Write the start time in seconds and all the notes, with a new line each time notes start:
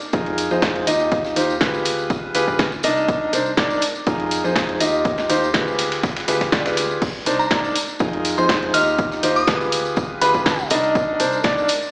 0.02 tambourine
0.13 F2 D#4 F4 G#4 A#4, kick, ride, tambourine
0.26 ride
0.38 open hi-hat, ride, tambourine
0.51 F2 D#4 F4 G#4 C5, tambourine
0.62 kick, snare, ride, tambourine
0.76 ride
0.87 D#2 D#4 F4 G4 D#5, open hi-hat, ride, tambourine
1.00 tambourine
1.12 kick, ride, tambourine
1.24 snare, tambourine
1.36 D#2 D#4 F4 G4 C5, open hi-hat, ride, tambourine
1.50 tambourine
1.61 D2 F4 G4 G#4 B4, kick, snare, ride, tambourine
1.74 tambourine
1.85 open hi-hat, ride, tambourine
1.98 tambourine
2.10 kick, ride, tambourine
2.35 D2 F4 G4 G#4 B4, open hi-hat, ride, tambourine
2.48 D2 F4 G4 G#4 B4, kick, tambourine
2.59 kick, snare, ride, tambourine
2.72 tambourine
2.83 C2 D4 D#4 A#4 D#5, open hi-hat, ride, tambourine
2.97 tambourine
3.08 kick, ride, tambourine
3.33 C2 D4 D#4 A#4 C5, open hi-hat, ride, tambourine
3.46 tambourine
3.57 C2 D4 D#4 A#4 D5, kick, snare, ride, tambourine
3.70 tambourine
3.82 open hi-hat, ride, tambourine
3.95 tambourine
4.07 F2 D#4 F4 G#4 A#4, kick, ride, tambourine
4.20 ride
4.31 open hi-hat, ride, tambourine
4.44 F2 D#4 F4 G#4 C5, tambourine
4.56 kick, snare, ride, tambourine
4.69 ride
4.80 D#2 D#4 F4 G4 D#5, open hi-hat, ride, tambourine
4.94 tambourine
5.05 kick, ride, tambourine
5.18 snare, tambourine
5.29 D#2 D#4 F4 G4 C5, open hi-hat, ride, tambourine
5.44 tambourine
5.54 D2 F4 G4 G#4 B4, kick, snare, ride, tambourine
5.68 tambourine
5.78 snare, open hi-hat, ride, tambourine
5.92 snare, ride, tambourine
6.03 kick, snare, ride, tambourine
6.16 snare, ride, tambourine
6.28 D2 F4 G4 G#4 B4, snare, open hi-hat, ride, tambourine
6.41 kick, snare, ride
6.52 D2 F4 G4 G#4 D5, kick, snare, ride, tambourine
6.66 D2 F4 G4 G#4 B4, snare, ride, tambourine
6.77 snare, open hi-hat, ride, tambourine
6.90 tambourine
7.02 kick, crash, ride, tambourine
7.26 C2 D4 D#4 A#4 C5, open hi-hat, ride, tambourine
7.39 A#5, tambourine
7.51 C2 D4 D#4 A#4 D5, kick, snare, ride, tambourine
7.64 tambourine
7.75 open hi-hat, ride, tambourine
7.88 tambourine
7.99 F2 D#4 F4 G#4 A#4, kick, ride, tambourine
8.13 ride
8.25 open hi-hat, ride, tambourine
8.38 F2 D#4 F4 G#4 C5 C6, tambourine
8.49 kick, snare, ride, tambourine
8.63 ride
8.74 D#2 D#4 F4 G4 D#5 F6, open hi-hat, ride, tambourine
8.87 tambourine
8.98 kick, ride, tambourine
9.12 snare, tambourine
9.23 D#2 D#4 F4 G4 C5, open hi-hat, ride, tambourine
9.36 D#6, tambourine
9.47 D2 F4 G4 G#4 B4, kick, snare, ride, tambourine
9.61 tambourine
9.72 open hi-hat, ride, tambourine
9.85 tambourine
9.96 kick, ride, tambourine
10.21 D2 F4 G4 G#4 B4 B5, open hi-hat, ride, tambourine
10.34 D2 F4 G4 G#4 B4, kick, tambourine
10.46 kick, snare, ride, tambourine
10.59 tambourine
10.70 C2 D4 D#4 A#4 D#5, open hi-hat, ride, tambourine
10.84 tambourine
10.95 kick, ride, tambourine
11.20 C2 D4 D#4 A#4 C5, open hi-hat, ride, tambourine
11.32 tambourine
11.44 C2 D4 D#4 A#4 D5, kick, snare, ride, tambourine
11.58 tambourine
11.68 open hi-hat, ride, tambourine
11.82 tambourine